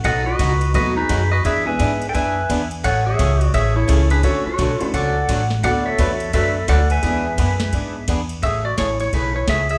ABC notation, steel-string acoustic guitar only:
X:1
M:4/4
L:1/16
Q:"Swing" 1/4=172
K:A
V:1 name="Steel-string acoustic guitar"
[B,,F,A,^DF]2 z2 [B,,F,A,DF] z3 [B,,F,A,DF]2 z2 [B,,F,A,DF] z3 | [E,B,DG]2 z2 [E,B,DG] z3 [E,B,DG]2 z2 [E,B,DG] z3 | [C,E,A,CG]2 z2 [C,E,A,CG] z3 [C,E,A,CG]2 z2 [C,E,A,CG] z3 | [D,F,A,CF]2 z2 [D,F,A,CF] z3 [D,F,A,CF]2 z2 [D,F,A,CF] z3 |
[D,F,A,DFB]2 z2 [D,F,A,DFB] z3 [D,F,A,DFB]2 z2 [D,F,A,DFB] z3 | [E,B,DG]2 z2 [E,B,DG] z3 [E,B,DG]2 z2 [E,B,DG] z3 | [C,E,A,CG]2 z2 [C,E,A,CG] z3 [C,E,A,CG]2 z2 [C,E,A,CG] z3 |]